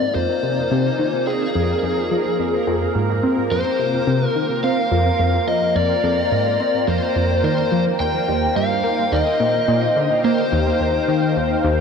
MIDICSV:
0, 0, Header, 1, 5, 480
1, 0, Start_track
1, 0, Key_signature, -4, "minor"
1, 0, Tempo, 560748
1, 1089, Time_signature, 4, 2, 24, 8
1, 10106, End_track
2, 0, Start_track
2, 0, Title_t, "Analog synth pad"
2, 0, Program_c, 0, 89
2, 0, Note_on_c, 0, 63, 98
2, 0, Note_on_c, 0, 65, 90
2, 0, Note_on_c, 0, 72, 76
2, 0, Note_on_c, 0, 79, 77
2, 0, Note_on_c, 0, 80, 78
2, 3480, Note_off_c, 0, 63, 0
2, 4034, Note_on_c, 0, 82, 79
2, 4178, Note_off_c, 0, 80, 0
2, 6847, Note_on_c, 0, 63, 84
2, 7414, Note_on_c, 0, 77, 74
2, 8291, Note_off_c, 0, 82, 0
2, 8701, Note_off_c, 0, 65, 0
2, 10106, Note_off_c, 0, 63, 0
2, 10106, Note_off_c, 0, 72, 0
2, 10106, Note_off_c, 0, 77, 0
2, 10106, Note_off_c, 0, 79, 0
2, 10106, End_track
3, 0, Start_track
3, 0, Title_t, "Lead electric guitar"
3, 0, Program_c, 1, 29
3, 0, Note_on_c, 1, 74, 97
3, 124, Note_off_c, 1, 74, 0
3, 127, Note_on_c, 1, 72, 102
3, 1087, Note_on_c, 1, 68, 82
3, 1117, Note_off_c, 1, 72, 0
3, 2493, Note_off_c, 1, 68, 0
3, 3010, Note_on_c, 1, 72, 88
3, 3652, Note_off_c, 1, 72, 0
3, 3652, Note_on_c, 1, 70, 88
3, 3935, Note_off_c, 1, 70, 0
3, 3973, Note_on_c, 1, 77, 97
3, 4689, Note_off_c, 1, 77, 0
3, 4692, Note_on_c, 1, 75, 91
3, 4929, Note_off_c, 1, 75, 0
3, 4933, Note_on_c, 1, 74, 99
3, 5894, Note_on_c, 1, 72, 93
3, 5919, Note_off_c, 1, 74, 0
3, 6364, Note_off_c, 1, 72, 0
3, 6374, Note_on_c, 1, 72, 94
3, 6706, Note_off_c, 1, 72, 0
3, 6850, Note_on_c, 1, 79, 107
3, 7330, Note_off_c, 1, 79, 0
3, 7334, Note_on_c, 1, 77, 102
3, 7813, Note_on_c, 1, 75, 99
3, 7825, Note_off_c, 1, 77, 0
3, 8769, Note_off_c, 1, 75, 0
3, 8773, Note_on_c, 1, 72, 88
3, 10106, Note_off_c, 1, 72, 0
3, 10106, End_track
4, 0, Start_track
4, 0, Title_t, "Synth texture"
4, 0, Program_c, 2, 99
4, 0, Note_on_c, 2, 58, 81
4, 0, Note_on_c, 2, 70, 81
4, 10106, Note_off_c, 2, 58, 0
4, 10106, Note_off_c, 2, 70, 0
4, 10106, End_track
5, 0, Start_track
5, 0, Title_t, "Synth arpeggio sound"
5, 0, Program_c, 3, 84
5, 130, Note_on_c, 3, 41, 80
5, 226, Note_off_c, 3, 41, 0
5, 369, Note_on_c, 3, 48, 76
5, 530, Note_off_c, 3, 48, 0
5, 610, Note_on_c, 3, 48, 105
5, 770, Note_off_c, 3, 48, 0
5, 849, Note_on_c, 3, 51, 80
5, 946, Note_off_c, 3, 51, 0
5, 1089, Note_on_c, 3, 60, 80
5, 1250, Note_off_c, 3, 60, 0
5, 1330, Note_on_c, 3, 41, 99
5, 1491, Note_off_c, 3, 41, 0
5, 1569, Note_on_c, 3, 41, 75
5, 1730, Note_off_c, 3, 41, 0
5, 1809, Note_on_c, 3, 53, 77
5, 2037, Note_off_c, 3, 53, 0
5, 2050, Note_on_c, 3, 41, 80
5, 2210, Note_off_c, 3, 41, 0
5, 2289, Note_on_c, 3, 41, 105
5, 2450, Note_off_c, 3, 41, 0
5, 2528, Note_on_c, 3, 44, 77
5, 2756, Note_off_c, 3, 44, 0
5, 2768, Note_on_c, 3, 60, 76
5, 2929, Note_off_c, 3, 60, 0
5, 3008, Note_on_c, 3, 41, 83
5, 3105, Note_off_c, 3, 41, 0
5, 3247, Note_on_c, 3, 48, 76
5, 3409, Note_off_c, 3, 48, 0
5, 3486, Note_on_c, 3, 48, 102
5, 3649, Note_off_c, 3, 48, 0
5, 3728, Note_on_c, 3, 51, 76
5, 3825, Note_off_c, 3, 51, 0
5, 3969, Note_on_c, 3, 60, 80
5, 4130, Note_off_c, 3, 60, 0
5, 4208, Note_on_c, 3, 41, 106
5, 4370, Note_off_c, 3, 41, 0
5, 4447, Note_on_c, 3, 41, 78
5, 4609, Note_off_c, 3, 41, 0
5, 4687, Note_on_c, 3, 53, 77
5, 4916, Note_off_c, 3, 53, 0
5, 4927, Note_on_c, 3, 41, 83
5, 5089, Note_off_c, 3, 41, 0
5, 5169, Note_on_c, 3, 41, 104
5, 5330, Note_off_c, 3, 41, 0
5, 5409, Note_on_c, 3, 44, 73
5, 5637, Note_off_c, 3, 44, 0
5, 5648, Note_on_c, 3, 60, 78
5, 5810, Note_off_c, 3, 60, 0
5, 5889, Note_on_c, 3, 41, 84
5, 5985, Note_off_c, 3, 41, 0
5, 6129, Note_on_c, 3, 41, 78
5, 6357, Note_off_c, 3, 41, 0
5, 6368, Note_on_c, 3, 51, 77
5, 6530, Note_off_c, 3, 51, 0
5, 6607, Note_on_c, 3, 53, 82
5, 6769, Note_off_c, 3, 53, 0
5, 6849, Note_on_c, 3, 39, 84
5, 7010, Note_off_c, 3, 39, 0
5, 7089, Note_on_c, 3, 39, 102
5, 7250, Note_off_c, 3, 39, 0
5, 7328, Note_on_c, 3, 43, 74
5, 7556, Note_off_c, 3, 43, 0
5, 7567, Note_on_c, 3, 58, 77
5, 7729, Note_off_c, 3, 58, 0
5, 7808, Note_on_c, 3, 39, 83
5, 7905, Note_off_c, 3, 39, 0
5, 8047, Note_on_c, 3, 46, 79
5, 8209, Note_off_c, 3, 46, 0
5, 8287, Note_on_c, 3, 46, 102
5, 8449, Note_off_c, 3, 46, 0
5, 8528, Note_on_c, 3, 50, 77
5, 8625, Note_off_c, 3, 50, 0
5, 8767, Note_on_c, 3, 58, 86
5, 8929, Note_off_c, 3, 58, 0
5, 9008, Note_on_c, 3, 39, 103
5, 9169, Note_off_c, 3, 39, 0
5, 9249, Note_on_c, 3, 39, 75
5, 9410, Note_off_c, 3, 39, 0
5, 9488, Note_on_c, 3, 51, 78
5, 9716, Note_off_c, 3, 51, 0
5, 9728, Note_on_c, 3, 39, 82
5, 9889, Note_off_c, 3, 39, 0
5, 9967, Note_on_c, 3, 39, 103
5, 10106, Note_off_c, 3, 39, 0
5, 10106, End_track
0, 0, End_of_file